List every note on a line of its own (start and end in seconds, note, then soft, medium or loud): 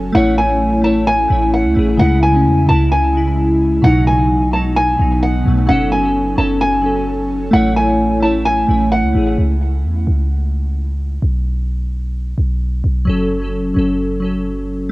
0.00 0.11 F#1 loud
0.00 0.11 F#3 medium
0.00 0.16 F#3 loud
0.00 0.16 C#4 medium
0.00 1.96 C#4 medium
0.00 0.13 A4 medium
0.00 0.17 A4 loud
0.00 0.11 G#5 loud
0.12 1.26 A1 loud
0.12 0.76 A3 loud
0.12 1.98 A3 medium
0.12 0.77 E4 loud
0.12 3.80 E4 medium
0.12 0.36 F#5 loud
0.17 0.78 C#5 loud
0.38 0.81 G#5 medium
0.82 1.25 A3 medium
0.82 1.26 E4 medium
0.82 1.05 A5 medium
0.86 1.27 C#5 medium
1.07 1.50 G#5 loud
1.28 1.66 A1 loud
1.28 1.71 A3 medium
1.28 1.72 E4 medium
1.32 1.73 C#5 medium
1.54 1.97 F#5 medium
1.65 1.76 C#2 loud
1.74 1.98 A1 loud
1.74 1.96 A3 medium
1.74 1.97 E4 medium
1.79 1.98 G#4 medium
1.97 2.47 C#2 loud
1.97 2.30 C#3 medium
1.97 3.82 C#3 medium
1.97 3.82 G#3 medium
1.97 2.31 G#3 medium
1.97 2.20 F#5 loud
2.02 2.32 E4 loud
2.23 2.66 G#5 medium
2.32 2.64 C#3 medium
2.32 2.65 G#3 medium
2.36 2.66 C#4 medium
2.46 2.67 E2 loud
2.66 3.80 C#2 loud
2.66 3.09 C#3 medium
2.66 3.10 G#3 medium
2.66 2.90 A5 medium
2.71 3.11 E4 medium
2.92 3.80 G#5 medium
3.12 3.76 C#3 medium
3.12 3.77 G#3 medium
3.17 3.78 E4 medium
3.82 4.95 B1 loud
3.82 4.45 B2 loud
3.82 4.47 F#3 medium
3.82 7.50 F#3 medium
3.82 5.67 B3 medium
3.82 5.67 D#4 medium
3.82 4.05 F#5 loud
3.86 4.48 D#4 loud
4.07 4.50 G#5 medium
4.51 4.94 B2 medium
4.51 4.95 F#3 medium
4.51 4.74 A5 medium
4.56 4.96 D#4 medium
4.76 5.20 G#5 loud
4.97 5.44 B1 loud
4.97 5.40 B2 medium
4.97 5.41 F#3 medium
5.02 5.42 D#4 medium
5.23 5.66 F#5 medium
5.43 5.68 B1 loud
5.43 5.65 B2 medium
5.43 5.65 F#3 medium
5.48 5.67 A3 medium
5.66 6.35 F#1 loud
5.66 5.99 F#3 loud
5.66 9.34 C#4 medium
5.66 6.00 C#4 medium
5.66 7.51 A4 medium
5.66 5.89 F#5 medium
5.71 6.01 A4 loud
5.92 6.35 G#5 medium
6.01 6.33 F#3 medium
6.01 6.35 C#4 medium
6.06 6.36 A4 medium
6.36 7.49 F#1 loud
6.36 6.78 F#3 medium
6.36 6.80 C#4 medium
6.36 6.59 A5 medium
6.40 6.81 A4 medium
6.61 7.49 G#5 medium
6.81 7.45 F#3 medium
6.81 7.46 C#4 medium
6.86 7.48 A4 medium
7.51 8.65 A1 loud
7.51 8.15 A3 loud
7.51 9.36 A3 medium
7.51 8.16 E4 medium
7.51 9.36 E4 medium
7.51 7.74 F#5 loud
7.55 8.17 C#5 loud
7.76 8.20 G#5 medium
8.20 8.63 A3 medium
8.20 8.64 E4 medium
8.20 8.43 A5 medium
8.25 8.65 C#5 medium
8.45 8.89 G#5 loud
8.66 9.05 A1 loud
8.66 9.09 A3 medium
8.66 9.10 E4 medium
8.71 9.11 C#5 medium
8.92 9.35 F#5 medium
9.03 9.14 C#2 loud
9.13 9.37 A1 loud
9.13 9.35 A3 medium
9.13 9.36 E4 medium
9.17 9.37 G#4 medium
9.38 9.85 C#2 loud
9.84 10.06 E2 medium
10.07 11.18 C#2 loud
11.22 12.34 B1 loud
12.38 12.82 B1 loud
12.84 13.06 B1 loud
13.05 13.73 F#1 loud
13.05 13.37 F#3 medium
13.05 13.38 C#4 medium
13.09 13.39 A4 loud
13.39 13.72 F#3 medium
13.39 13.73 C#4 medium
13.44 13.74 A4 medium
13.74 14.88 F#1 loud
13.74 14.17 F#3 medium
13.74 14.18 C#4 medium
13.79 14.19 A4 medium
14.20 14.84 F#3 medium
14.20 14.85 C#4 medium
14.24 14.86 A4 medium